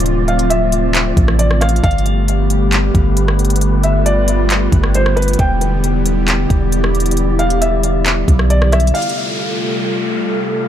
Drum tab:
HH |x-----------x-----x-----x-----------x-----------x-----------x-----------x-----------x---x---x---|x---x---x---x-----------x-----------x-----------x-----------x-----------x-----------x--x--x--x--|x-----------x-----------x-----------x-----------x-----------x-----------x-----------x--x--x--x--|x-----------x-----------x-----------x-----------x-----------x-----------x-----------x--x--x--x--|
CP |------------------------------------------------x-----------------------------------------------|------------------------------------------------x-----------------------------------------------|------------------------------------------------x-----------------------------------------------|------------------------------------------------x-----------------------------------------------|
SD |------------------------------------------------------------------r-----------r-----r-----------|------------------------------------------------------------------------------r-----------------|------------------------------------------------------------------r-----------r-----------------|------------------------------------------------------------------------------r-----------------|
BD |------------------------------------------------------------o-----------------------------------|o-----------------------------------------------------------o-----------------------------------|------------------------------------------------------------o-----------------------------------|o-----------------------------------------------------------o-----------------------------------|

HH |x-----------x-----x-----x-----------x-----------x-----------x-----------x-----------x---x---x---|x---x---x---------------------------------------------------------------------------------------|
CP |------------------------------------------------x-----------------------------------------------|------------------------------------------------------------------------------------------------|
SD |------------------------------------------------------------------r-----------r-----r-----------|------------------------------------------------------------------------------------------------|
BD |------------------------------------------------------------o-----------------------------------|------------------------------------------------------------------------------------------------|